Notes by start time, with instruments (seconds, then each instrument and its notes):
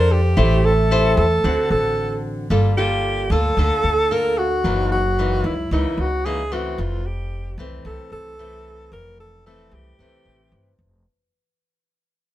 Already playing: upright bass F2, nylon-string guitar F3 D4 A4 C5, alto saxophone A#4
0.12 alto saxophone G4
0.37 upright bass A1, nylon-string guitar A3 E4 G4 C5
0.65 alto saxophone A4
0.91 nylon-string guitar E4 G4 C5
1.17 upright bass E2, alto saxophone A4
1.44 upright bass D2, nylon-string guitar D3 C4 F#4
1.70 upright bass A1, alto saxophone A4
2.50 upright bass G1, nylon-string guitar G3 A#3 F4 A4
2.77 nylon-string guitar A#3 F4 A4, alto saxophone G4
3.30 upright bass D2, nylon-string guitar A#3 F4 A4, alto saxophone A4
3.57 upright bass D2, nylon-string guitar D3 A#3 F4 A4
3.83 upright bass D2
4.11 nylon-string guitar A#3 F4 A4, alto saxophone A#4
4.39 alto saxophone F#4
4.64 upright bass F#1, nylon-string guitar F#2 E3 A#3 D#4
4.92 alto saxophone F#4
5.19 nylon-string guitar E3 A#3 D#4
5.44 upright bass C#2, alto saxophone E4
5.71 upright bass C#2, nylon-string guitar C#3 E3 A#3 D#4, alto saxophone E4
5.97 upright bass C#2, alto saxophone F#4
6.26 nylon-string guitar E3 A#3 D#4, alto saxophone G#4
6.52 nylon-string guitar E3 A3 C4, alto saxophone F#4
6.78 upright bass F1, nylon-string guitar F2, alto saxophone F4
7.07 alto saxophone G4
7.58 upright bass C2, nylon-string guitar E3 A3 C4
7.85 upright bass C2, nylon-string guitar C3, alto saxophone A4
8.12 upright bass C2, alto saxophone A4
8.39 nylon-string guitar E3 A3 C4
8.92 upright bass F1, nylon-string guitar F2, alto saxophone A#4
9.20 alto saxophone A4
9.46 nylon-string guitar E3 A3 C4, alto saxophone A4
9.71 upright bass C2, alto saxophone G4
9.99 upright bass C2, nylon-string guitar C3 E3 A3 C4
10.25 upright bass A1
10.52 upright bass G1
10.79 upright bass F1